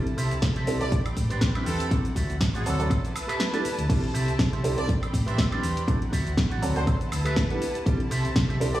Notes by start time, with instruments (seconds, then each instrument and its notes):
Already playing: violin section C4 E4 A5
0.07 closed hi-hat
0.17 fingered electric bass C3, clean electric guitar G4 A4 C5 E5, open hi-hat, shaker
0.31 fingered electric bass C2, closed hi-hat, shaker
0.42 fingered electric bass C3, kick, snare, closed hi-hat, shaker
0.55 clean electric guitar G4 A4 C5 E5, closed hi-hat
0.67 fingered electric bass C2, grand piano G3 C4 D4 E4 A4, open hi-hat, shaker
0.80 fingered electric bass C2, grand piano G3 C4 D4 E4 A4, trumpet section D5, closed hi-hat, shaker
0.91 violin section D4 G5 B5, kick, closed hi-hat, shaker
1.06 muted fingered electric bass stroke, closed hi-hat, high woodblock, shaker
1.17 fingered electric bass A2, kick, open hi-hat, shaker
1.30 fingered electric bass A1, clean electric guitar G4 B4 C5 D5, closed hi-hat, shaker
1.41 kick, snare, closed hi-hat, shaker
1.55 grand piano G3 C4 D4 E4 B4, clean electric guitar G4 B4 C5 E5, closed hi-hat, high woodblock
1.66 fingered electric bass E2, trumpet section A4, open hi-hat, shaker
1.80 closed hi-hat, shaker
1.91 grand piano F#3 C4 D4 E4 A4, violin section E4 F#5, kick, closed hi-hat, shaker
2.05 muted fingered electric bass stroke, closed hi-hat, shaker
2.15 fingered electric bass D2, clean electric guitar F#4 C5 D5 E5, kick, open hi-hat, shaker
2.30 fingered electric bass D2, closed hi-hat, shaker
2.41 fingered electric bass A1, kick, snare, closed hi-hat, shaker
2.54 clean electric guitar F#4 C5 D5 F#5, trumpet section A4, closed hi-hat, shaker
2.65 fingered electric bass D2, grand piano F#3 C4 D4 E4 A4, open hi-hat, shaker
2.79 fingered electric bass D2, grand piano F#3 C4 D4 E4 A4, closed hi-hat, shaker
2.90 violin section B4 A5, kick, closed hi-hat, high woodblock, shaker
3.05 closed hi-hat, shaker
3.16 open hi-hat, high woodblock, shaker
3.28 clean electric guitar G4 A4 B4 E5, closed hi-hat, high woodblock, shaker
3.40 snare, closed hi-hat, shaker
3.52 grand piano G3 B3 D4 E4 A4, clean electric guitar G4 A4 B4 D5, snare, closed hi-hat, shaker
3.65 muted fingered electric bass stroke, open hi-hat, shaker
3.78 fingered electric bass D2, closed hi-hat, shaker
3.89 grand piano G3 C4 D4 E4 A4, violin section C4, kick, closed hi-hat, crash, shaker
4.04 closed hi-hat
4.13 fingered electric bass C3, clean electric guitar G4 A4 C5 E5, open hi-hat, shaker
4.28 fingered electric bass C2, closed hi-hat, shaker
4.39 fingered electric bass C3, kick, snare, closed hi-hat, shaker
4.52 clean electric guitar G4 A4 C5 E5, closed hi-hat
4.63 fingered electric bass C2, grand piano G3 C4 D4 E4 A4, open hi-hat, shaker
4.77 fingered electric bass C2, grand piano G3 C4 D4 E4 A4, trumpet section D5, closed hi-hat, shaker
4.89 violin section D4 G5 B5, kick, closed hi-hat, shaker
5.02 muted fingered electric bass stroke, closed hi-hat, high woodblock, shaker
5.13 fingered electric bass A2, kick, open hi-hat, shaker
5.26 fingered electric bass A1, clean electric guitar G4 B4 C5 D5, trumpet section E5, closed hi-hat, shaker
5.38 kick, snare, closed hi-hat, shaker
5.51 grand piano G3 C4 D4 E4 B4, clean electric guitar G4 B4 C5 D5, closed hi-hat, high woodblock
5.63 fingered electric bass E2, open hi-hat, shaker
5.77 closed hi-hat, shaker
5.88 grand piano F#3 C4 D4 E4 A4, violin section E4 F#5, kick, closed hi-hat, shaker
6.02 muted fingered electric bass stroke, closed hi-hat
6.12 fingered electric bass D2, clean electric guitar F#4 C5 D5 E5, kick, open hi-hat, shaker
6.27 fingered electric bass D2, closed hi-hat, shaker
6.37 fingered electric bass A1, kick, snare, closed hi-hat, shaker
6.50 clean electric guitar F#4 C5 D5 F#5, closed hi-hat
6.62 fingered electric bass D2, grand piano F#3 C4 D4 E4 A4, open hi-hat, shaker
6.76 fingered electric bass D2, grand piano F#3 C4 D4 E4 A4, trumpet section C5, closed hi-hat, shaker
6.87 violin section B4 A5, trumpet section C5, kick, closed hi-hat, high woodblock, shaker
7.01 muted fingered electric bass stroke, closed hi-hat, shaker
7.12 fingered electric bass D2, open hi-hat, high woodblock, shaker
7.25 clean electric guitar G4 A4 B4 E5, closed hi-hat, high woodblock, shaker
7.36 kick, snare, closed hi-hat, shaker
7.50 grand piano G3 B3 D4 E4 A4, clean electric guitar G4 A4 B4 F#5, closed hi-hat
7.62 open hi-hat, shaker
7.75 closed hi-hat, shaker
7.86 fingered electric bass C2, grand piano G3 C4 D4 E4 A4, violin section C4 A5, kick, closed hi-hat, shaker
8.00 closed hi-hat
8.10 fingered electric bass C3, clean electric guitar G4 A4 C5 E5, open hi-hat, shaker
8.25 fingered electric bass C2, closed hi-hat, shaker
8.36 fingered electric bass C3, kick, snare, closed hi-hat, shaker
8.48 clean electric guitar G4 A4 C5 E5, closed hi-hat
8.60 fingered electric bass C2, grand piano G3 C4 D4 E4 A4, open hi-hat, shaker
8.74 fingered electric bass C2, grand piano G3 C4 D4 E4 A4, trumpet section D5, closed hi-hat, shaker